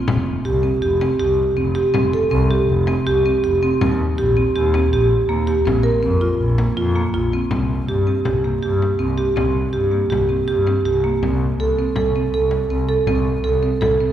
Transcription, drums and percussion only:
0.08 frame drum medium
0.26 frame drum soft
0.64 frame drum soft
0.83 frame drum soft
1.01 frame drum soft
1.39 frame drum soft
1.57 frame drum soft
1.76 frame drum soft
1.94 frame drum medium
2.13 frame drum soft
2.50 frame drum soft
2.68 frame drum soft
2.87 frame drum soft
3.25 frame drum soft
3.44 frame drum soft
3.62 frame drum soft
3.81 frame drum medium
4.38 frame drum soft
4.56 frame drum soft
4.74 frame drum soft
5.11 frame drum soft
5.30 frame drum soft
5.67 frame drum medium
6.04 frame drum soft
6.40 frame drum soft
6.58 frame drum soft
6.96 frame drum soft
7.32 frame drum soft
7.51 frame drum medium
8.25 frame drum soft
8.64 frame drum soft
8.82 frame drum soft
9.37 frame drum soft
10.12 frame drum soft
10.49 frame drum soft
10.67 frame drum soft
11.23 frame drum soft
11.96 frame drum soft
12.32 frame drum soft
12.51 frame drum soft
13.07 frame drum soft
13.82 frame drum medium

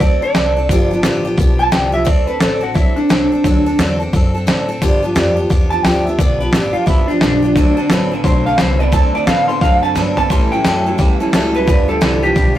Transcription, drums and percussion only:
0.00 kick loud
0.00 open hi-hat soft
0.35 snare loud
0.35 open hi-hat medium
0.69 kick loud
0.69 open hi-hat soft
1.03 snare loud
1.03 open hi-hat soft
1.38 kick loud
1.38 open hi-hat medium
1.72 snare loud
1.72 open hi-hat medium
2.07 kick loud
2.07 open hi-hat medium
2.41 snare loud
2.41 open hi-hat medium
2.75 kick loud
2.75 open hi-hat soft
3.10 snare loud
3.10 open hi-hat medium
3.44 kick loud
3.44 open hi-hat soft
3.79 snare loud
3.79 open hi-hat soft
4.13 kick loud
4.13 open hi-hat medium
4.48 snare loud
4.48 open hi-hat medium
4.82 kick medium
4.82 open hi-hat soft
5.16 snare loud
5.16 open hi-hat medium
5.50 kick loud
5.50 open hi-hat medium
5.85 snare loud
5.85 open hi-hat medium
6.19 kick loud
6.19 open hi-hat soft
6.53 snare loud
6.53 open hi-hat soft
6.87 kick loud
6.87 open hi-hat medium
7.21 snare loud
7.21 open hi-hat soft
7.56 kick loud
7.56 open hi-hat soft
7.90 snare loud
7.90 open hi-hat soft
8.24 kick loud
8.24 open hi-hat medium
8.58 snare loud
8.58 open hi-hat medium
8.92 kick loud
8.92 open hi-hat soft
9.27 snare loud
9.27 open hi-hat soft
9.61 kick loud
9.61 open hi-hat soft
9.96 snare medium
9.96 open hi-hat medium
10.17 floor tom medium
10.30 kick loud
10.30 open hi-hat soft
10.65 snare loud
10.65 open hi-hat soft
10.99 kick loud
10.99 open hi-hat medium
11.33 snare loud
11.33 open hi-hat medium
11.68 kick loud
11.68 open hi-hat soft
12.02 snare loud
12.02 open hi-hat soft
12.36 kick loud
12.36 open hi-hat soft

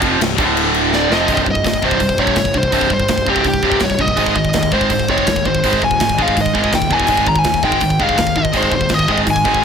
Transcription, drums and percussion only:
0.02 kick loud
0.02 crash medium
0.21 snare loud
0.21 crash medium
0.38 kick loud
0.38 crash medium
0.57 crash medium
0.74 crash medium
0.93 snare medium
1.12 snare medium
1.28 kick medium
1.28 open hi-hat medium
1.37 kick medium
1.46 kick medium
1.55 kick medium
1.64 kick medium
1.64 snare loud
1.64 open hi-hat medium
1.74 kick medium
1.82 kick medium
1.91 kick medium
2.00 kick medium
2.00 open hi-hat medium
2.09 kick medium
2.18 kick medium
2.27 kick medium
2.36 kick medium
2.36 snare loud
2.36 open hi-hat medium
2.45 kick medium
2.54 kick medium
2.63 kick medium
2.72 kick medium
2.72 open hi-hat medium
2.81 kick medium
2.90 kick medium
3.00 kick medium
3.08 kick medium
3.08 snare loud
3.08 open hi-hat medium
3.18 kick medium
3.26 kick medium
3.36 kick medium
3.44 kick medium
3.44 open hi-hat medium
3.54 kick medium
3.63 kick medium
3.72 kick medium
3.80 kick medium
3.80 snare loud
3.80 open hi-hat soft
3.90 kick medium
3.99 kick medium
4.08 kick medium
4.17 kick medium
4.17 open hi-hat soft
4.26 kick medium
4.36 kick medium
4.45 kick medium
4.53 kick medium
4.53 snare loud
4.53 open hi-hat medium
4.63 kick medium
4.72 kick medium
4.81 kick medium
4.90 kick medium
4.90 open hi-hat medium
4.99 kick medium
5.09 kick medium
5.18 kick medium
5.27 kick medium
5.27 snare loud
5.27 open hi-hat medium
5.36 kick medium
5.45 kick medium
5.55 kick medium
5.64 kick medium
5.64 open hi-hat medium
5.73 kick medium
5.82 kick medium
5.91 kick medium
6.00 kick medium
6.00 snare loud
6.00 open hi-hat medium
6.09 kick medium
6.19 kick medium
6.28 kick medium
6.37 kick medium
6.37 open hi-hat medium
6.46 kick medium
6.55 kick medium
6.64 kick medium
6.73 kick medium
6.73 snare medium
6.73 open hi-hat medium
6.82 kick medium
6.91 kick medium
7.00 kick medium
7.07 kick medium
7.07 open hi-hat soft
7.17 kick medium
7.27 kick medium
7.36 kick medium
7.44 kick medium
7.44 snare loud
7.44 open hi-hat medium
7.54 kick medium
7.63 kick medium
7.72 kick medium
7.81 kick medium
7.81 open hi-hat medium
7.90 kick medium
8.00 kick medium
8.09 kick medium
8.18 kick medium
8.18 snare loud
8.18 open hi-hat medium
8.27 kick medium
8.36 kick medium
8.45 kick medium
8.53 kick medium
8.53 open hi-hat medium
8.63 kick medium
8.72 kick medium
8.81 kick medium
8.89 kick medium
8.89 snare loud
8.89 open hi-hat medium
8.99 kick medium
9.08 kick medium
9.18 kick medium
9.27 kick medium
9.27 open hi-hat medium
9.36 kick medium
9.45 kick medium
9.55 kick medium

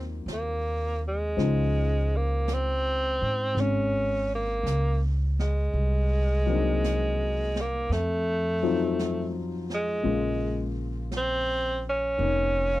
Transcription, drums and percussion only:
0.28 brush sweep soft
0.28 snare soft
0.28 hi-hat pedal soft
1.39 brush sweep soft
1.39 snare soft
2.48 brush sweep soft
2.48 snare soft
2.48 hi-hat pedal soft
3.57 brush sweep soft
3.57 snare soft
4.66 brush sweep soft
4.66 snare soft
4.66 hi-hat pedal soft
5.39 snare soft
5.75 brush sweep soft
6.84 brush sweep soft
6.84 snare soft
6.84 hi-hat pedal soft
7.56 snare soft
7.92 brush sweep soft
7.92 snare soft
8.99 brush sweep soft
8.99 snare soft
8.99 hi-hat pedal soft
9.70 snare soft
10.05 brush sweep soft
11.12 brush sweep soft
11.12 snare soft
11.12 hi-hat pedal soft
12.20 brush sweep soft

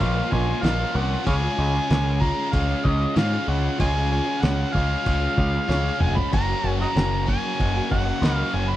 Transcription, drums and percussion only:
0.00 kick medium
0.00 crash medium
0.32 kick loud
0.64 snare loud
0.64 crash medium
1.27 kick loud
1.27 crash medium
1.90 snare loud
1.90 crash medium
2.22 kick medium
2.53 kick medium
2.53 crash medium
2.85 kick medium
3.16 snare loud
3.16 crash medium
3.80 kick loud
3.80 crash medium
4.43 snare loud
4.43 crash medium
4.75 kick medium
5.06 kick medium
5.06 crash medium
5.38 kick medium
5.70 snare medium
6.00 mid tom loud
6.17 floor tom medium
6.33 kick loud
6.33 crash medium
6.96 snare loud
6.96 crash medium
7.28 kick medium
7.60 kick medium
7.60 crash medium
7.91 kick medium
8.23 snare loud
8.23 crash medium

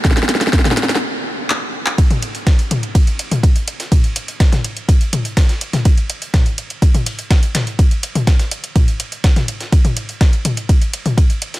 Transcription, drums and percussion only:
0.05 kick loud
0.05 snare loud
0.05 closed hi-hat medium
0.05 mid tom loud
0.11 snare medium
0.17 snare loud
0.17 closed hi-hat soft
0.23 snare medium
0.29 snare loud
0.29 closed hi-hat loud
0.35 snare medium
0.41 snare medium
0.41 closed hi-hat soft
0.47 snare medium
0.53 kick loud
0.53 snare loud
0.53 closed hi-hat medium
0.59 snare loud
0.65 snare medium
0.65 closed hi-hat soft
0.65 mid tom loud
0.71 snare loud
0.77 snare loud
0.77 closed hi-hat loud
0.83 snare loud
0.89 snare medium
0.89 closed hi-hat soft
0.95 snare medium
1.50 clap loud
1.86 clap medium
1.98 kick loud
1.98 closed hi-hat medium
1.98 ride medium
2.11 closed hi-hat soft
2.11 mid tom loud
2.22 closed hi-hat loud
2.22 ride medium
2.35 closed hi-hat soft
2.47 kick loud
2.47 snare loud
2.47 closed hi-hat medium
2.47 ride medium
2.59 closed hi-hat soft
2.71 closed hi-hat loud
2.71 mid tom loud
2.71 ride medium
2.83 closed hi-hat medium
2.83 ride soft
2.95 kick loud
2.95 closed hi-hat medium
2.95 ride medium
3.07 closed hi-hat soft
3.07 ride soft
3.19 closed hi-hat loud
3.19 ride medium
3.31 closed hi-hat soft
3.31 mid tom medium
3.43 kick loud
3.43 closed hi-hat medium
3.43 ride medium
3.56 closed hi-hat soft
3.68 closed hi-hat loud
3.68 ride medium
3.80 snare soft
3.80 closed hi-hat soft
3.92 kick loud
3.92 closed hi-hat medium
3.92 mid tom medium
3.92 ride medium
4.04 closed hi-hat soft
4.16 closed hi-hat loud
4.16 ride medium
4.28 closed hi-hat soft
4.40 kick loud
4.40 snare loud
4.40 closed hi-hat medium
4.40 ride medium
4.52 snare medium
4.52 closed hi-hat soft
4.52 mid tom loud
4.64 closed hi-hat loud
4.64 ride medium
4.77 closed hi-hat medium
4.89 kick loud
4.89 closed hi-hat medium
4.89 ride medium
5.01 closed hi-hat soft
5.13 closed hi-hat loud
5.13 mid tom medium
5.13 ride medium
5.25 closed hi-hat soft
5.37 kick loud
5.37 snare loud
5.37 closed hi-hat medium
5.37 ride medium
5.49 snare soft
5.49 closed hi-hat soft
5.61 closed hi-hat loud
5.61 ride medium
5.73 snare soft
5.73 closed hi-hat soft
5.73 mid tom medium
5.85 kick loud
5.85 closed hi-hat medium
5.85 ride medium
5.97 closed hi-hat soft
6.10 closed hi-hat loud
6.10 ride medium
6.22 closed hi-hat soft
6.34 kick loud
6.34 snare loud
6.34 closed hi-hat medium
6.34 mid tom medium
6.34 ride medium
6.46 closed hi-hat soft
6.58 closed hi-hat loud
6.58 ride medium
6.70 closed hi-hat medium
6.70 ride soft
6.82 kick loud
6.82 closed hi-hat medium
6.82 ride medium
6.94 closed hi-hat soft
6.94 mid tom medium
6.94 ride soft
7.06 closed hi-hat loud
7.06 open hi-hat medium
7.19 closed hi-hat soft
7.30 kick loud
7.30 snare loud
7.30 closed hi-hat medium
7.30 ride medium
7.43 closed hi-hat soft
7.55 snare loud
7.55 closed hi-hat loud
7.55 mid tom medium
7.55 ride medium
7.67 closed hi-hat soft
7.79 kick loud
7.79 closed hi-hat medium
7.79 ride medium
7.91 closed hi-hat soft
7.91 ride soft
8.03 closed hi-hat loud
8.03 ride medium
8.15 closed hi-hat soft
8.15 mid tom medium
8.27 kick loud
8.27 snare loud
8.27 closed hi-hat medium
8.27 ride medium
8.39 snare medium
8.39 closed hi-hat soft
8.51 closed hi-hat loud
8.51 ride medium
8.64 closed hi-hat medium
8.76 kick loud
8.76 closed hi-hat medium
8.76 mid tom medium
8.76 ride medium
8.88 closed hi-hat soft
9.00 closed hi-hat loud
9.00 ride medium
9.12 closed hi-hat soft
9.24 kick loud
9.24 snare loud
9.24 closed hi-hat medium
9.24 ride medium
9.36 snare soft
9.36 closed hi-hat soft
9.36 mid tom medium
9.48 closed hi-hat loud
9.48 ride medium
9.60 snare soft
9.60 closed hi-hat soft
9.72 kick loud
9.72 closed hi-hat medium
9.72 ride medium
9.85 closed hi-hat soft
9.85 mid tom medium
9.97 closed hi-hat loud
9.97 ride medium
10.09 closed hi-hat soft
10.21 kick loud
10.21 snare loud
10.21 closed hi-hat medium
10.21 ride medium
10.33 closed hi-hat soft
10.45 closed hi-hat loud
10.45 mid tom medium
10.45 ride medium
10.57 closed hi-hat medium
10.57 ride soft
10.69 kick loud
10.69 closed hi-hat medium
10.69 ride medium
10.82 closed hi-hat soft
10.82 ride soft
10.93 closed hi-hat loud
10.93 ride medium
11.06 closed hi-hat soft
11.06 mid tom medium
11.18 kick loud
11.18 closed hi-hat medium
11.18 ride medium
11.30 closed hi-hat soft
11.42 closed hi-hat loud
11.42 ride medium
11.54 snare soft
11.54 closed hi-hat soft

